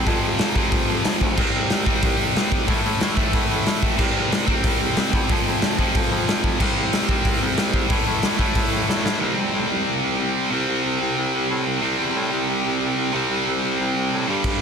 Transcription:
Already playing: C4
0.06 F2 C3 F3, kick, open hi-hat
0.23 F2
0.39 F2, snare, open hi-hat
0.55 F2 C3 F3, kick
0.72 F2, kick, open hi-hat
0.88 F2
1.04 F2, snare, open hi-hat
1.21 D2, kick
1.37 C2 C3 G3 C4, kick, crash
1.53 C2
1.70 C2, snare, open hi-hat
1.86 C2 C3 G3 C4, kick
2.02 C2, kick, open hi-hat
2.19 C2
2.36 C2, snare, open hi-hat
2.52 C2, kick
2.67 A2 E3 A3, kick, open hi-hat
2.85 A2
3.01 A2, snare, open hi-hat
3.16 A2 E3 A3, kick
3.33 A2, kick, open hi-hat
3.50 A2
3.66 A2, snare, open hi-hat
3.83 kick
3.97 C2 C3 G3 C4, kick, crash
4.15 C2
4.32 C2, snare, open hi-hat
4.46 C2 C3 G3 C4, kick
4.64 C2, kick, open hi-hat
4.81 C2
4.96 C2, snare, open hi-hat
5.13 E2, kick
5.29 F2 C3 F3, kick, open hi-hat
5.46 F2
5.62 F2, snare, open hi-hat
5.78 F2 C3 F3, kick
5.95 F2, kick, open hi-hat
6.11 F2
6.27 F2, snare, open hi-hat
6.44 F2, kick
6.60 C2 C3 G3 C4, kick, crash
6.76 C2
6.92 C2, snare, open hi-hat
7.08 C2 C3 G3 C4, kick
7.25 C2, kick, open hi-hat
7.41 C2
7.57 C2, snare, open hi-hat
7.73 C2, kick
7.89 A2 E3 A3, kick, open hi-hat
8.06 A2
8.22 A2, snare, open hi-hat
8.38 A2 E3 A3, kick
8.55 A2, kick, open hi-hat
8.71 A2
8.88 A2, snare
9.04 A2, snare
9.19 C2 C3 G3 C4
9.37 E2
9.53 A2
9.70 C2
9.86 C2
10.02 C2
10.18 C2
10.51 C2 C3 G3 C4
10.68 C2
10.84 C2
11.01 C2
11.17 C2
11.34 C2
11.50 A2
11.66 C2
11.82 C2 C3 G3 C4
11.98 E2
12.15 A2
12.31 C2
12.48 C2
12.64 C2
12.80 C2
12.97 C2
13.13 C2 C3 G3 C4
13.30 C2
13.46 C2
13.63 C2
13.80 C2
13.96 C2
14.12 A2
14.27 G2 D3 G3
14.44 G2, kick, crash

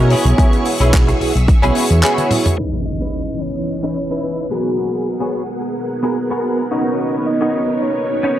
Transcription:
Already playing: B2 B3 D#4 E4 F#4 G#4 A#4 C#5 C#6
0.10 C#4 E4 G#4 E5, open hi-hat
0.25 B1, closed hi-hat
0.38 B3 E4 F#4 G#4 C#5, kick, closed hi-hat
0.53 closed hi-hat
0.65 open hi-hat
0.80 B1 B3 C#4 E4 F#4 G#4 C#5, closed hi-hat
0.93 kick, clap, closed hi-hat
1.07 muted clean electric guitar stroke, closed hi-hat
1.20 B1 B3 E4 F#4 G#4 C#5, muted clean electric guitar stroke, open hi-hat
1.35 B1, closed hi-hat
1.48 kick, closed hi-hat
1.62 B1 B3 C#4 E4 F#4 G#4 C#5, closed hi-hat
1.75 open hi-hat
1.90 E2, closed hi-hat
2.03 B3 C#4 E4 F#4 G#4 C#5, clap, closed hi-hat
2.18 closed hi-hat, high tom
2.31 open hi-hat, mid tom
2.46 closed hi-hat, mid tom
2.57 E3 B3 C#4 D#4 E4 B4 D#5, impact
2.85 D#5
3.00 C#4 D#4 E4 B4
3.41 C#5, muted clean electric guitar stroke
3.83 C#4 D#4 E4 B4
4.10 C#4 D#4 E4 B4
4.23 B4
4.50 B3 D#4 F#4 G#4 A#4 F#5
5.20 B3 F#4 G#4 C#5
5.61 muted clean electric guitar stroke
6.03 B3 F#4 G#4 A#4
6.30 B3 F#4 G#4 A#4
6.70 B3 C#4 D#4 F#4 A#4 C#5
7.26 D#5
7.41 B3 C#4 D#4 A#4
7.81 C#5, muted clean electric guitar stroke
8.23 B3 C#4 D#4 C#5

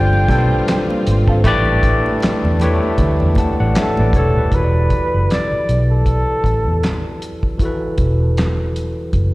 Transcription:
Already playing: G1 G3 C4 D4 F4 A4 C5 G5
0.13 muted conga
0.29 B1 G3 D4 F4 A4 B4, kick, closed hi-hat, high conga
0.38 C5
0.68 snare, clap, closed hi-hat
0.90 muted conga, high conga
1.07 G#1, closed hi-hat
1.28 C4 F4 A4, kick
1.44 A1 A3 D4 E4 G4 B4 D5, kick, closed hi-hat, muted conga, low conga
1.65 muted conga, high conga
1.83 kick, closed hi-hat
2.06 high conga
2.20 muted fingered electric bass stroke, snare, clap, closed hi-hat, muted conga
2.45 E2, high conga
2.60 A3 E4 G4 B4, closed hi-hat, low conga
2.64 C#5
2.83 high conga
2.98 D2, kick, closed hi-hat, muted conga, low conga
3.20 E2, muted conga
3.35 F#5 A5, kick, closed hi-hat, high conga
3.60 A1 D5 F#5
3.75 C#5 E5, snare, clap, closed hi-hat
3.80 A4
3.97 A1 B4 D5, muted conga, high conga
4.13 E1 A4 C#5, kick, closed hi-hat
4.18 A4
4.37 D#1 G4 B4
4.51 E1 E3 E4 F#4 B4, kick, closed hi-hat
4.56 A4 C#5
4.64 D5
4.90 kick, closed hi-hat
5.14 F#1
5.30 D5, snare, clap, closed hi-hat
5.53 muted fingered electric bass stroke
5.69 B1, closed hi-hat
5.92 A4
6.06 kick, closed hi-hat
6.44 A1, kick, closed hi-hat
6.68 E2
6.83 snare, clap, closed hi-hat
7.22 closed hi-hat
7.43 kick
7.58 E3 E4 F#4, kick, closed hi-hat
7.63 A4 B4
7.98 E1, kick, closed hi-hat
8.37 snare, clap, closed hi-hat
8.76 closed hi-hat
9.13 F#1, kick, closed hi-hat

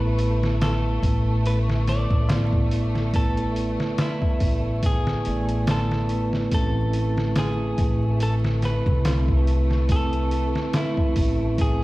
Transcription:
Already playing: A1 A3 B3 E4 B4
0.19 open hi-hat
0.43 snare
0.61 A4, snare, open hi-hat, tabla na
1.03 A1, kick, open hi-hat
1.46 B4, open hi-hat
1.69 snare
1.87 D5, snare, open hi-hat
2.10 A1, kick
2.29 A3 B3 E4 D5, snare, open hi-hat, tabla na
2.53 kick
2.71 open hi-hat
2.95 snare
3.13 A3 B3 E4 A4 B4, kick, open hi-hat
3.37 closed hi-hat
3.56 open hi-hat
3.80 snare
3.98 E4, snare, open hi-hat, tabla na
4.22 kick
4.40 A1, kick, open hi-hat
4.83 G#4, kick, open hi-hat
5.07 snare
5.25 A1 A3 B3 E4 D5, open hi-hat
5.49 closed hi-hat
5.67 A4, snare, open hi-hat, tabla na
5.91 snare
6.09 A3 B3 E4 B4, open hi-hat
6.33 snare
6.51 A1 A3 C4 E4 A4 B4, kick, open hi-hat
6.93 open hi-hat
7.18 snare
7.36 G#4, snare, open hi-hat, tabla na
7.78 A1, kick, open hi-hat
8.20 A4, open hi-hat
8.45 snare
8.62 B4, snare, open hi-hat
8.86 C2, kick
9.05 A3 C4 E4 B4, snare, open hi-hat, tabla na
9.28 kick
9.47 open hi-hat
9.71 snare
9.89 A3 C4 E4 A4 B4, kick, open hi-hat
10.13 closed hi-hat
10.31 open hi-hat
10.55 snare
10.73 E4, snare, open hi-hat, tabla na
10.97 kick
11.16 A1, kick, open hi-hat
11.58 G#4, kick, open hi-hat

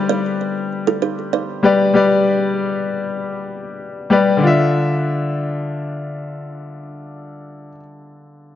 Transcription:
Already playing: G3 G4 B4 D5
0.09 B4 D5
0.87 F4 A4
1.02 G4 B4
1.33 B4 D5
1.63 G3 G4 B4 D5
1.94 G3 G4 B4 D5
4.10 G3 G4 B4 D5
4.37 D3 D4
4.44 F4 E5

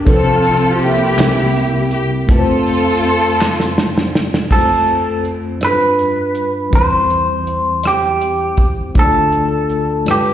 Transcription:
0.05 C2 C3 F3 C4 F4 A4 B4, kick, closed hi-hat
0.15 C5
0.45 closed hi-hat
0.81 A#3 E4 G4, closed hi-hat
1.16 C2 C3 G3 C4 E4 A4, clap, closed hi-hat
1.20 snare
1.25 A#4
1.56 closed hi-hat
1.91 G4, closed hi-hat
2.27 F2 A3 C4 F4 A4, kick, closed hi-hat
2.33 B4
2.39 C5
2.66 closed hi-hat
3.03 closed hi-hat
3.41 snare, clap
3.60 snare
3.78 snare
3.98 snare
4.15 snare
4.34 snare
4.50 F2 G3 C4 F4 A4 C5, kick, crash
4.56 A3
4.87 closed hi-hat
5.25 closed hi-hat
5.60 G2 G3 D4 F4 A4, cross-stick, closed hi-hat
5.65 B4
5.70 B4
5.99 closed hi-hat
6.35 closed hi-hat
6.70 E2 E3 G3 C4 E4, kick, closed hi-hat
6.75 C5
7.10 closed hi-hat
7.47 closed hi-hat
7.83 G4, cross-stick, closed hi-hat
8.21 closed hi-hat
8.57 kick, closed hi-hat
8.95 D2 D3 A3 D4 F4 C5, kick, closed hi-hat
8.99 A4
9.04 D5
9.32 closed hi-hat
9.70 closed hi-hat
10.05 G2 G3 G#3 F4 B4, cross-stick, closed hi-hat
10.11 G4

